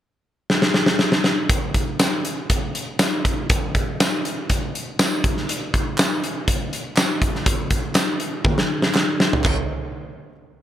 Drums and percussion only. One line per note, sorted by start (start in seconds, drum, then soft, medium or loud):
0.50 snare medium
0.62 snare medium
0.74 snare medium
0.86 snare medium
0.99 snare medium
1.12 snare medium
1.24 snare medium
1.49 kick loud
1.49 closed hi-hat medium
1.74 kick medium
1.74 closed hi-hat medium
1.99 snare loud
1.99 closed hi-hat medium
1.99 tambourine loud
2.25 closed hi-hat medium
2.50 kick medium
2.50 closed hi-hat medium
2.75 closed hi-hat medium
2.99 snare loud
2.99 closed hi-hat medium
2.99 tambourine loud
3.25 kick medium
3.25 closed hi-hat medium
3.50 kick loud
3.50 closed hi-hat loud
3.75 kick medium
3.75 closed hi-hat medium
4.00 snare loud
4.00 closed hi-hat medium
4.00 tambourine loud
4.25 closed hi-hat medium
4.50 kick medium
4.50 closed hi-hat medium
4.75 closed hi-hat medium
4.99 snare loud
4.99 closed hi-hat medium
4.99 tambourine loud
5.24 kick medium
5.24 closed hi-hat medium
5.37 snare soft
5.49 closed hi-hat medium
5.74 kick medium
5.74 closed hi-hat medium
5.98 snare loud
5.98 clap loud
5.98 closed hi-hat medium
5.98 tambourine loud
6.24 closed hi-hat medium
6.48 kick medium
6.48 closed hi-hat medium
6.73 closed hi-hat medium
6.96 snare loud
6.96 clap medium
6.96 closed hi-hat medium
6.96 tambourine loud
7.22 kick medium
7.22 closed hi-hat medium
7.35 snare soft
7.46 kick loud
7.46 closed hi-hat loud
7.70 kick medium
7.70 closed hi-hat medium
7.95 snare loud
7.95 clap medium
7.95 closed hi-hat medium
7.95 tambourine loud
8.20 closed hi-hat medium
8.44 kick medium
8.44 high tom medium
8.58 snare medium
8.82 snare medium
8.94 snare medium
8.94 clap loud
9.20 snare medium
9.33 floor tom medium
9.44 kick loud
9.44 clap medium
9.44 floor tom loud
9.44 splash medium